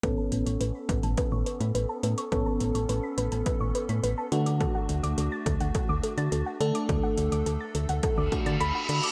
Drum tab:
HH |x-xxx-xxx-xxx-xx|x-xxx-xxx-xxx-xx|x-xxx-xxx-xxx-xx|x-xxx-xxx-xxx-xx|
BD |o-----o-o-------|o-------o-------|o-----o-o-------|o-------o-o-----|